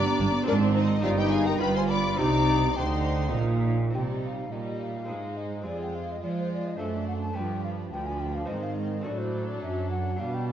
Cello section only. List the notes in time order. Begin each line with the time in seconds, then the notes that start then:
0.19 G2
0.48 G#2
1.04 G2
1.61 G2
2.20 C3
2.78 D3
3.37 A#2
3.95 C3
4.52 A#2
5.09 G#2
5.66 F2
6.23 F3
6.80 F#2
7.36 G2
7.94 D2
8.50 G#2
9.07 A2
9.63 F#2
10.20 B2